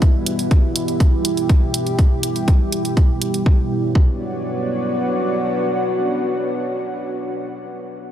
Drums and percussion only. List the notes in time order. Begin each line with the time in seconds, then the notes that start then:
0.02 kick, closed hi-hat
0.26 closed hi-hat
0.39 closed hi-hat
0.51 kick, closed hi-hat
0.76 closed hi-hat
0.88 closed hi-hat
1.00 kick, closed hi-hat
1.25 closed hi-hat
1.37 closed hi-hat
1.49 kick, closed hi-hat
1.74 closed hi-hat
1.87 closed hi-hat
1.99 kick, closed hi-hat
2.23 closed hi-hat
2.36 closed hi-hat
2.48 kick, closed hi-hat
2.72 closed hi-hat
2.85 closed hi-hat
2.97 kick, closed hi-hat
3.22 closed hi-hat
3.34 closed hi-hat
3.46 kick
3.95 kick